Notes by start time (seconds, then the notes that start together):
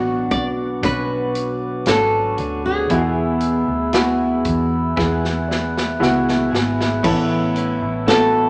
Already playing: A1 F#3 B3 C#4 D4 F#4 B4 F#5 C#6 D6
0.31 B1 D5, kick, closed hi-hat
0.83 B1 B2 F#3 C#4 D4 F#4 B4, kick, closed hi-hat
1.35 closed hi-hat
1.86 G#1 F#3 C#4 D4 F#4 A4 B4, snare, closed hi-hat
2.37 D2 C#4 D4 F#4, closed hi-hat
2.66 G#4
2.90 E2 B2 E3 B3 E4 F#4 G#4 E5 B5 E6, kick, closed hi-hat
2.98 G#4
3.40 closed hi-hat
3.68 D2
3.93 E3 B3 E4 F#4 G#4, snare, closed hi-hat
4.45 E2, kick, closed hi-hat
4.96 E2 E3 B3 E4 G#4 F#6, kick, snare
5.25 snare
5.48 D5, snare
5.77 snare
6.00 C#2 E3 B3 E4 F#4 G#4 E5, snare
6.29 snare
6.51 G#1 B3 E4 G#4 F#5, snare
6.81 snare
7.03 A1 A2 E3 A3 B3 C#4 E4 A4 B4 C#5 B5 E6, kick, crash
7.55 C#4 E4 B4, hi-hat pedal, open hi-hat
7.82 A1
8.07 A3 B3 C#4 E4 F#4 A4 B4, snare, hi-hat pedal, open hi-hat